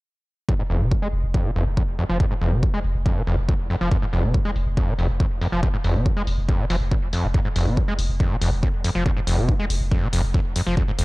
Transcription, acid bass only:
0.49 0.55 F2 loud
0.59 0.63 G#2 medium
0.70 0.82 F2 loud
0.81 0.93 C3 medium
0.91 0.97 F2 medium
1.02 1.08 G#3 medium
1.34 1.47 F2 medium
1.45 1.51 C3 loud
1.56 1.65 F2 loud
1.77 1.83 F2 medium
1.99 2.05 F2 loud
2.09 2.18 F3 medium
2.20 2.26 F2 loud
2.31 2.34 G#2 medium
2.41 2.54 F2 loud
2.52 2.64 C3 medium
2.63 2.69 F2 medium
2.74 2.80 G#3 medium
3.06 3.18 F2 medium
3.17 3.22 C3 loud
3.27 3.36 F2 loud
3.49 3.55 F2 medium
3.70 3.76 F2 loud
3.81 3.90 F3 medium
3.91 3.97 F2 loud
4.02 4.06 G#2 medium
4.13 4.25 F2 loud
4.24 4.36 C3 medium
4.34 4.40 F2 medium
4.45 4.51 G#3 medium
4.77 4.89 F2 medium
4.88 4.94 C3 loud
4.99 5.08 F2 loud
5.20 5.26 F2 medium
5.41 5.47 F2 loud
5.52 5.61 F3 medium
5.63 5.69 F2 loud
5.74 5.77 G#2 medium
5.84 5.97 F2 loud
5.95 6.07 C3 medium
6.06 6.12 F2 medium
6.17 6.22 G#3 medium
6.49 6.61 F2 medium
6.59 6.65 C3 loud
6.70 6.76 F3 loud
6.91 6.95 F2 medium
7.13 7.25 F2 medium
7.24 7.27 C3 medium
7.34 7.40 F2 loud
7.45 7.49 G#2 medium
7.56 7.68 F2 loud
7.67 7.79 C3 medium
7.77 7.83 F2 medium
7.88 7.94 G#3 medium
8.20 8.32 F2 medium
8.31 8.37 C3 loud
8.41 8.50 F2 loud
8.63 8.69 F2 medium
8.84 8.90 F2 loud
8.95 9.04 F3 medium
9.06 9.12 F2 loud
9.17 9.20 G#2 medium
9.27 9.39 F2 loud
9.38 9.50 C3 medium
9.49 9.55 F2 medium
9.59 9.65 G#3 medium
9.91 10.04 F2 medium
10.02 10.08 C3 loud
10.13 10.22 F2 loud
10.34 10.40 F2 medium
10.56 10.62 F2 loud
10.67 10.75 F3 medium
10.77 10.83 F2 loud
10.88 10.91 G#2 medium
10.99 11.05 F2 loud

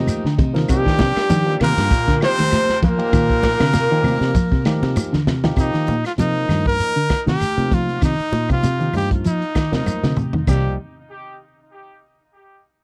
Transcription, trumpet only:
0.00 0.36 D#4 loud
0.71 1.57 G4 loud
1.63 2.19 A#4 loud
2.24 2.80 C5 loud
2.85 4.93 A#4 loud
5.59 6.02 D#4 medium
6.06 6.12 F4 medium
6.20 6.63 D#4 loud
6.67 7.24 A#4 loud
7.29 7.76 G4 loud
7.74 8.03 F4 medium
8.05 8.48 D#4 loud
8.52 8.92 F4 medium
8.97 9.10 G4 medium
9.27 9.70 D#4 medium
9.75 10.15 D#4 medium
10.49 10.77 G4 medium

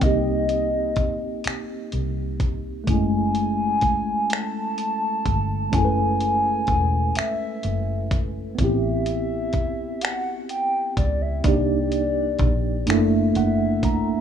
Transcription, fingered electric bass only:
0.02 0.97 C2 loud
0.97 1.41 A#1 medium
1.46 muted fingered electric bass stroke soft
1.93 2.84 C2 medium
2.88 5.22 F#1 loud
5.26 5.69 G1 medium
5.73 6.64 F#1 loud
6.68 7.12 E1 medium
7.17 muted fingered electric bass stroke soft
7.64 8.55 F#1 medium
8.59 10.93 A1 loud
10.97 11.41 C#2 medium
11.45 12.36 C2 loud
12.40 12.83 A#1 medium
12.88 13.31 F#1 loud
13.36 14.21 F#1 medium

